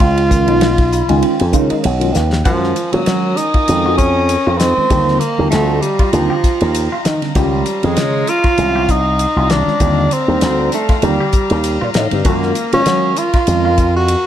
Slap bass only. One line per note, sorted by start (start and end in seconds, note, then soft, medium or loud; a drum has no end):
0.00 0.48 C#2 loud
0.48 1.01 B1 medium
1.10 1.21 C#2 medium
1.41 1.52 F2 medium
1.54 1.68 C#3 medium
1.71 muted slap bass stroke soft
1.85 2.11 B1 medium
2.16 2.42 D#2 medium
2.45 2.72 F#2 medium
2.94 3.05 A#2 medium
3.07 3.33 F#3 medium
3.69 4.36 F2 medium
4.47 4.73 F2 medium
4.78 muted slap bass stroke soft
4.90 5.17 D#2 loud
5.39 5.50 D#2 medium
5.53 5.79 D2 medium
6.13 6.28 D#2 medium
6.44 muted slap bass stroke soft
6.61 6.87 D#2 medium
7.06 7.20 D#3 medium
7.35 7.62 C#2 medium
7.84 7.95 F2 medium
7.97 8.23 C#3 medium
8.58 9.25 C2 medium
9.36 9.63 C2 medium
9.80 10.07 D#2 loud
10.28 10.40 D#2 medium
10.42 10.68 D2 medium
11.03 11.17 D#2 medium
11.34 muted slap bass stroke soft
11.51 11.77 D#2 medium
11.82 11.94 A#2 medium
11.95 12.10 A2 medium
12.13 12.25 G2 medium
12.25 12.51 F#2 medium
12.73 12.85 A#2 medium
12.86 13.13 F#3 medium
13.47 14.14 F2 medium